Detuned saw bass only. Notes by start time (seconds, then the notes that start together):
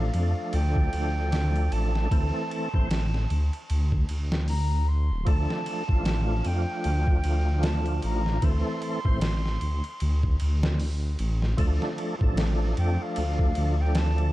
Already playing: A1
0.14 F2
0.53 D2
0.94 D2
1.72 A1
2.12 D2
2.74 A1
3.31 D2
3.70 D2
4.10 D2
5.11 D1
5.27 D2
5.89 A1
6.46 F2
6.85 D2
7.25 D2
8.04 A1
8.42 D2
9.05 A1
9.62 D2
10.02 D2
10.41 D2
11.20 A1
11.58 D2
12.21 A1
12.78 F2
13.18 D2
13.57 D2